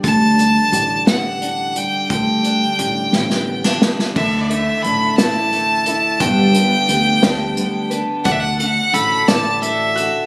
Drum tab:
CC |------------|------------|x-----------|------------|
HH |x-x-x-x-x-x-|x-x-x-------|--x-x-x-x-x-|x-x-x-x-x-x-|
SD |------o-----|------oo-ooo|------o-----|------o-----|
BD |o-----------|o-----------|o-----------|o-----------|

CC |------------|
HH |x-x-x-x-x-x-|
SD |------o-----|
BD |o-----------|